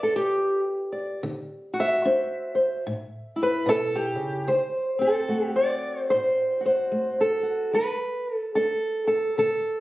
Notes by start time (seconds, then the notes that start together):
Already playing: D3 B4
0.03 A4
0.16 G4
0.92 D5
1.23 D3
1.74 F#4
1.80 E5
2.05 D4 C5
2.55 C5
2.87 A2
3.36 E4
3.43 B4
3.66 B2 A4
3.96 G4
4.16 C#3
4.47 D3 C5
4.99 C4 A4
5.29 A3 F#4
5.56 D5
6.10 A2 C5
6.61 F#4
6.66 C5
6.92 A3
7.21 A4
7.43 F#4
7.73 G3 B4
8.35 A4
8.55 D4 A4
9.07 A4
9.38 D3 A4